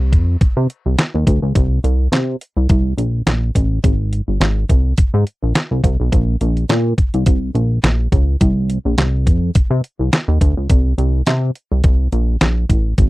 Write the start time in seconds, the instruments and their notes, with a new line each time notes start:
Already playing: analog synth bass C2
0.12 analog synth bass F2, kick, closed hi-hat
0.41 analog synth bass C3, kick, closed hi-hat
0.57 analog synth bass C3
0.70 closed hi-hat
0.86 analog synth bass C2
0.98 snare, clap, closed hi-hat
1.15 analog synth bass D#2
1.27 analog synth bass D2, kick, closed hi-hat
1.42 analog synth bass C#2
1.55 analog synth bass C2, kick, closed hi-hat
1.84 analog synth bass C2, closed hi-hat
2.12 analog synth bass C3, snare, clap, closed hi-hat
2.41 closed hi-hat
2.57 analog synth bass C2
2.69 analog synth bass C2, kick, closed hi-hat
2.98 analog synth bass A#1, closed hi-hat
3.27 analog synth bass A#1, snare, clap, closed hi-hat
3.55 analog synth bass A1, kick, closed hi-hat
3.84 analog synth bass G#1, kick, closed hi-hat
4.13 closed hi-hat
4.28 analog synth bass G1
4.41 analog synth bass G#1, snare, clap, closed hi-hat
4.69 analog synth bass C2, kick, closed hi-hat
4.98 analog synth bass G#2, kick, closed hi-hat
5.14 analog synth bass G#2
5.27 closed hi-hat
5.43 analog synth bass A#1
5.55 snare, clap, closed hi-hat
5.71 analog synth bass C2
5.84 analog synth bass C2, kick, closed hi-hat
6.00 analog synth bass B1
6.12 analog synth bass A#1, kick, closed hi-hat
6.41 analog synth bass A#1, closed hi-hat
6.57 closed hi-hat
6.69 analog synth bass A#2, snare, clap, closed hi-hat
6.98 kick, closed hi-hat
7.14 analog synth bass C2, closed hi-hat
7.26 analog synth bass C2, kick, closed hi-hat
7.55 analog synth bass A#1, closed hi-hat
7.84 analog synth bass A#1, snare, clap, closed hi-hat
8.12 analog synth bass C#2, kick, closed hi-hat
8.41 analog synth bass C2, kick, closed hi-hat
8.70 closed hi-hat
8.85 analog synth bass A#1
8.98 analog synth bass C2, snare, clap, closed hi-hat
9.27 analog synth bass F2, kick, closed hi-hat
9.55 analog synth bass C3, kick, closed hi-hat
9.71 analog synth bass C3
9.84 closed hi-hat
9.99 analog synth bass C2
10.13 snare, clap, closed hi-hat
10.28 analog synth bass D#2
10.41 analog synth bass D2, kick, closed hi-hat
10.57 analog synth bass C#2
10.70 analog synth bass C2, kick, closed hi-hat
10.98 analog synth bass C2, closed hi-hat
11.26 analog synth bass C3, snare, clap, closed hi-hat
11.55 closed hi-hat
11.72 analog synth bass C2
11.84 analog synth bass C2, kick, closed hi-hat
12.12 analog synth bass A#1, closed hi-hat
12.41 analog synth bass A#1, snare, clap, closed hi-hat
12.70 analog synth bass A1, kick, closed hi-hat
12.98 analog synth bass G#1, kick, closed hi-hat